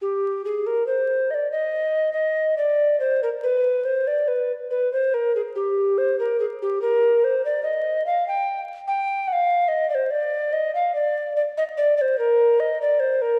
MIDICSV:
0, 0, Header, 1, 2, 480
1, 0, Start_track
1, 0, Key_signature, -3, "minor"
1, 0, Tempo, 847458
1, 17, Time_signature, 4, 2, 24, 8
1, 3857, Tempo, 828729
1, 7670, End_track
2, 0, Start_track
2, 0, Title_t, "Recorder"
2, 0, Program_c, 0, 74
2, 10, Note_on_c, 0, 67, 58
2, 240, Note_off_c, 0, 67, 0
2, 256, Note_on_c, 0, 68, 57
2, 378, Note_on_c, 0, 70, 52
2, 386, Note_off_c, 0, 68, 0
2, 488, Note_off_c, 0, 70, 0
2, 491, Note_on_c, 0, 72, 52
2, 739, Note_on_c, 0, 75, 52
2, 748, Note_off_c, 0, 72, 0
2, 761, Note_on_c, 0, 74, 56
2, 767, Note_off_c, 0, 75, 0
2, 855, Note_off_c, 0, 74, 0
2, 858, Note_on_c, 0, 75, 61
2, 1203, Note_off_c, 0, 75, 0
2, 1207, Note_on_c, 0, 75, 57
2, 1445, Note_off_c, 0, 75, 0
2, 1458, Note_on_c, 0, 74, 62
2, 1693, Note_off_c, 0, 74, 0
2, 1699, Note_on_c, 0, 72, 60
2, 1817, Note_off_c, 0, 72, 0
2, 1829, Note_on_c, 0, 70, 53
2, 1863, Note_off_c, 0, 70, 0
2, 1945, Note_on_c, 0, 71, 59
2, 2180, Note_on_c, 0, 72, 58
2, 2188, Note_off_c, 0, 71, 0
2, 2308, Note_on_c, 0, 74, 57
2, 2316, Note_off_c, 0, 72, 0
2, 2424, Note_on_c, 0, 71, 55
2, 2432, Note_off_c, 0, 74, 0
2, 2557, Note_off_c, 0, 71, 0
2, 2665, Note_on_c, 0, 71, 56
2, 2782, Note_off_c, 0, 71, 0
2, 2792, Note_on_c, 0, 72, 60
2, 2911, Note_on_c, 0, 70, 67
2, 2920, Note_off_c, 0, 72, 0
2, 3028, Note_off_c, 0, 70, 0
2, 3033, Note_on_c, 0, 68, 57
2, 3067, Note_off_c, 0, 68, 0
2, 3146, Note_on_c, 0, 67, 64
2, 3387, Note_on_c, 0, 72, 69
2, 3395, Note_off_c, 0, 67, 0
2, 3501, Note_off_c, 0, 72, 0
2, 3509, Note_on_c, 0, 70, 53
2, 3621, Note_off_c, 0, 70, 0
2, 3625, Note_on_c, 0, 68, 59
2, 3658, Note_off_c, 0, 68, 0
2, 3751, Note_on_c, 0, 67, 58
2, 3857, Note_off_c, 0, 67, 0
2, 3861, Note_on_c, 0, 70, 70
2, 4107, Note_on_c, 0, 72, 69
2, 4116, Note_off_c, 0, 70, 0
2, 4225, Note_off_c, 0, 72, 0
2, 4230, Note_on_c, 0, 74, 61
2, 4333, Note_off_c, 0, 74, 0
2, 4337, Note_on_c, 0, 75, 64
2, 4576, Note_off_c, 0, 75, 0
2, 4583, Note_on_c, 0, 77, 64
2, 4701, Note_off_c, 0, 77, 0
2, 4707, Note_on_c, 0, 79, 74
2, 4898, Note_off_c, 0, 79, 0
2, 5054, Note_on_c, 0, 79, 67
2, 5286, Note_on_c, 0, 78, 69
2, 5295, Note_off_c, 0, 79, 0
2, 5315, Note_on_c, 0, 77, 75
2, 5321, Note_off_c, 0, 78, 0
2, 5520, Note_on_c, 0, 75, 67
2, 5529, Note_off_c, 0, 77, 0
2, 5643, Note_off_c, 0, 75, 0
2, 5646, Note_on_c, 0, 74, 59
2, 5674, Note_on_c, 0, 72, 65
2, 5680, Note_off_c, 0, 74, 0
2, 5766, Note_on_c, 0, 74, 68
2, 5774, Note_off_c, 0, 72, 0
2, 6011, Note_on_c, 0, 75, 76
2, 6020, Note_off_c, 0, 74, 0
2, 6135, Note_off_c, 0, 75, 0
2, 6140, Note_on_c, 0, 77, 64
2, 6251, Note_off_c, 0, 77, 0
2, 6254, Note_on_c, 0, 74, 71
2, 6490, Note_off_c, 0, 74, 0
2, 6494, Note_on_c, 0, 74, 73
2, 6528, Note_off_c, 0, 74, 0
2, 6617, Note_on_c, 0, 75, 70
2, 6652, Note_off_c, 0, 75, 0
2, 6732, Note_on_c, 0, 74, 80
2, 6846, Note_off_c, 0, 74, 0
2, 6849, Note_on_c, 0, 74, 62
2, 6871, Note_on_c, 0, 72, 67
2, 6876, Note_off_c, 0, 74, 0
2, 6969, Note_off_c, 0, 72, 0
2, 6972, Note_on_c, 0, 70, 80
2, 7210, Note_on_c, 0, 75, 82
2, 7219, Note_off_c, 0, 70, 0
2, 7333, Note_off_c, 0, 75, 0
2, 7337, Note_on_c, 0, 74, 72
2, 7441, Note_on_c, 0, 72, 70
2, 7450, Note_off_c, 0, 74, 0
2, 7568, Note_on_c, 0, 70, 74
2, 7577, Note_off_c, 0, 72, 0
2, 7670, Note_off_c, 0, 70, 0
2, 7670, End_track
0, 0, End_of_file